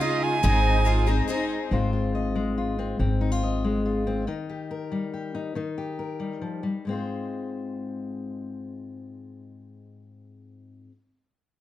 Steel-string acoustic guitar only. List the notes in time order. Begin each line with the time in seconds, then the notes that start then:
1.71 G#2 G#3 C4 F4 C5
1.93 F4
2.15 D#5
2.35 G#3
2.58 F4
2.79 C4
2.99 G#2 C4
3.21 D#4
3.32 F4
3.43 D#5
3.64 G#3
3.86 F4
4.07 C4
4.27 D#3 D#4
4.49 G4
4.71 A#4
4.92 G3
5.14 G4
5.35 D#4
5.55 D#3 D#4
5.78 G4
5.99 A#4
6.20 G3
6.42 F3
6.63 G3
6.85 G#2 G#3 C4
6.91 F4 C5